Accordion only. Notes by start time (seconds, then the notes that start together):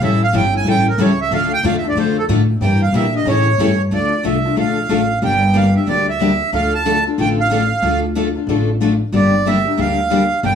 0.04 E5
0.24 F5
0.36 G5
0.57 G#5
0.69 G5
0.89 A#4
1.02 C#5
1.21 E5
1.34 F5
1.54 G5
1.67 F5
1.78 E5
1.89 D5
1.99 C5
2.18 A4
2.62 G5
2.82 F5
2.96 E5
3.16 D#5
3.28 C#5
3.94 D5
4.26 E5
4.59 F5
5.24 G5
5.56 F5
5.76 E5
5.89 D5
6.09 E5
6.54 F5
6.75 A5
7.21 G5
7.40 F5
9.16 D5
9.47 E5
9.80 F5
10.45 G5